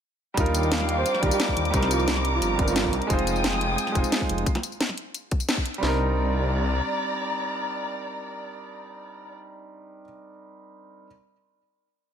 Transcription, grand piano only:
0, 0, Header, 1, 2, 480
1, 0, Start_track
1, 0, Key_signature, -3, "minor"
1, 0, Tempo, 340909
1, 528, Time_signature, 4, 2, 24, 8
1, 17087, End_track
2, 0, Start_track
2, 0, Title_t, "Grand piano"
2, 0, Program_c, 0, 0
2, 480, Note_on_c, 0, 55, 91
2, 502, Note_on_c, 0, 62, 84
2, 526, Note_on_c, 0, 63, 86
2, 549, Note_on_c, 0, 65, 84
2, 569, Note_on_c, 0, 70, 99
2, 748, Control_c, 0, 64, 127
2, 1660, Note_off_c, 0, 55, 0
2, 1681, Note_off_c, 0, 62, 0
2, 1681, Note_on_c, 0, 55, 77
2, 1699, Note_off_c, 0, 63, 0
2, 1702, Note_on_c, 0, 62, 72
2, 1710, Note_off_c, 0, 65, 0
2, 1720, Note_off_c, 0, 70, 0
2, 1726, Note_on_c, 0, 63, 70
2, 1749, Note_on_c, 0, 65, 72
2, 1771, Note_on_c, 0, 70, 88
2, 2380, Note_off_c, 0, 55, 0
2, 2401, Note_on_c, 0, 55, 93
2, 2407, Note_off_c, 0, 62, 0
2, 2419, Note_off_c, 0, 63, 0
2, 2426, Note_on_c, 0, 60, 88
2, 2430, Note_off_c, 0, 65, 0
2, 2441, Note_off_c, 0, 70, 0
2, 2447, Note_on_c, 0, 62, 84
2, 2469, Control_c, 0, 64, 0
2, 2470, Note_on_c, 0, 63, 86
2, 2492, Note_on_c, 0, 70, 102
2, 2759, Control_c, 0, 64, 127
2, 3583, Note_off_c, 0, 55, 0
2, 3604, Note_on_c, 0, 55, 79
2, 3606, Note_off_c, 0, 60, 0
2, 3619, Note_off_c, 0, 62, 0
2, 3627, Note_on_c, 0, 60, 73
2, 3631, Note_off_c, 0, 63, 0
2, 3642, Note_off_c, 0, 70, 0
2, 3649, Note_on_c, 0, 62, 75
2, 3672, Note_on_c, 0, 63, 70
2, 3694, Note_on_c, 0, 70, 88
2, 4318, Note_off_c, 0, 55, 0
2, 4323, Note_on_c, 0, 56, 92
2, 4325, Note_off_c, 0, 60, 0
2, 4340, Note_off_c, 0, 62, 0
2, 4346, Note_off_c, 0, 63, 0
2, 4346, Note_on_c, 0, 60, 86
2, 4363, Note_off_c, 0, 70, 0
2, 4367, Note_on_c, 0, 63, 86
2, 4383, Control_c, 0, 64, 0
2, 4390, Note_on_c, 0, 65, 86
2, 4412, Note_on_c, 0, 72, 104
2, 4637, Control_c, 0, 64, 127
2, 5501, Note_off_c, 0, 56, 0
2, 5522, Note_off_c, 0, 60, 0
2, 5522, Note_on_c, 0, 56, 81
2, 5539, Note_off_c, 0, 63, 0
2, 5544, Note_on_c, 0, 60, 72
2, 5550, Note_off_c, 0, 65, 0
2, 5562, Note_off_c, 0, 72, 0
2, 5567, Note_on_c, 0, 63, 74
2, 5588, Note_on_c, 0, 65, 72
2, 5611, Note_on_c, 0, 72, 88
2, 6237, Note_off_c, 0, 56, 0
2, 6247, Note_off_c, 0, 60, 0
2, 6259, Note_off_c, 0, 63, 0
2, 6270, Note_off_c, 0, 65, 0
2, 6281, Note_off_c, 0, 72, 0
2, 6307, Control_c, 0, 64, 0
2, 8140, Note_on_c, 0, 55, 85
2, 8172, Note_on_c, 0, 60, 76
2, 8207, Note_on_c, 0, 62, 76
2, 8241, Note_on_c, 0, 63, 78
2, 8275, Note_on_c, 0, 70, 94
2, 8505, Control_c, 0, 64, 127
2, 14070, Note_off_c, 0, 55, 0
2, 14086, Note_off_c, 0, 60, 0
2, 14103, Note_off_c, 0, 62, 0
2, 14120, Note_off_c, 0, 63, 0
2, 14137, Note_off_c, 0, 70, 0
2, 15586, Control_c, 0, 64, 0
2, 17087, End_track
0, 0, End_of_file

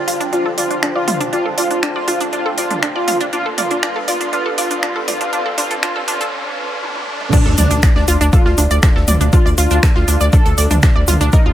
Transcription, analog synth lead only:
0, 0, Header, 1, 2, 480
1, 0, Start_track
1, 0, Key_signature, -1, "minor"
1, 0, Tempo, 500000
1, 1276, Time_signature, 4, 2, 24, 8
1, 11069, End_track
2, 0, Start_track
2, 0, Title_t, "Analog synth lead"
2, 0, Program_c, 0, 81
2, 0, Note_on_c, 0, 65, 84
2, 179, Note_off_c, 0, 65, 0
2, 315, Note_on_c, 0, 65, 91
2, 465, Note_off_c, 0, 65, 0
2, 556, Note_on_c, 0, 65, 86
2, 777, Note_off_c, 0, 65, 0
2, 919, Note_on_c, 0, 65, 91
2, 1139, Note_off_c, 0, 65, 0
2, 1275, Note_on_c, 0, 65, 98
2, 1425, Note_off_c, 0, 65, 0
2, 1517, Note_on_c, 0, 65, 94
2, 1737, Note_off_c, 0, 65, 0
2, 1879, Note_on_c, 0, 65, 88
2, 2099, Note_off_c, 0, 65, 0
2, 2236, Note_on_c, 0, 65, 92
2, 2385, Note_off_c, 0, 65, 0
2, 2475, Note_on_c, 0, 65, 92
2, 2696, Note_off_c, 0, 65, 0
2, 2840, Note_on_c, 0, 65, 93
2, 3059, Note_off_c, 0, 65, 0
2, 3196, Note_on_c, 0, 65, 96
2, 3345, Note_off_c, 0, 65, 0
2, 3437, Note_on_c, 0, 65, 97
2, 3657, Note_off_c, 0, 65, 0
2, 3676, Note_on_c, 0, 65, 101
2, 3825, Note_off_c, 0, 65, 0
2, 3916, Note_on_c, 0, 65, 99
2, 4137, Note_off_c, 0, 65, 0
2, 4156, Note_on_c, 0, 65, 100
2, 4305, Note_off_c, 0, 65, 0
2, 4395, Note_on_c, 0, 65, 98
2, 4616, Note_off_c, 0, 65, 0
2, 4636, Note_on_c, 0, 65, 95
2, 4785, Note_off_c, 0, 65, 0
2, 4877, Note_on_c, 0, 65, 89
2, 5097, Note_off_c, 0, 65, 0
2, 5117, Note_on_c, 0, 65, 104
2, 5266, Note_off_c, 0, 65, 0
2, 5358, Note_on_c, 0, 65, 101
2, 5506, Note_off_c, 0, 65, 0
2, 5597, Note_on_c, 0, 65, 106
2, 5746, Note_off_c, 0, 65, 0
2, 5835, Note_on_c, 0, 65, 110
2, 5985, Note_off_c, 0, 65, 0
2, 7035, Note_on_c, 0, 62, 101
2, 7185, Note_off_c, 0, 62, 0
2, 7277, Note_on_c, 0, 62, 96
2, 7497, Note_off_c, 0, 62, 0
2, 7638, Note_on_c, 0, 62, 95
2, 7858, Note_off_c, 0, 62, 0
2, 7995, Note_on_c, 0, 65, 102
2, 8291, Note_off_c, 0, 65, 0
2, 8956, Note_on_c, 0, 65, 101
2, 9105, Note_off_c, 0, 65, 0
2, 9196, Note_on_c, 0, 65, 95
2, 9417, Note_off_c, 0, 65, 0
2, 9560, Note_on_c, 0, 65, 96
2, 9779, Note_off_c, 0, 65, 0
2, 9918, Note_on_c, 0, 69, 99
2, 10212, Note_off_c, 0, 69, 0
2, 10875, Note_on_c, 0, 63, 106
2, 11025, Note_off_c, 0, 63, 0
2, 11069, End_track
0, 0, End_of_file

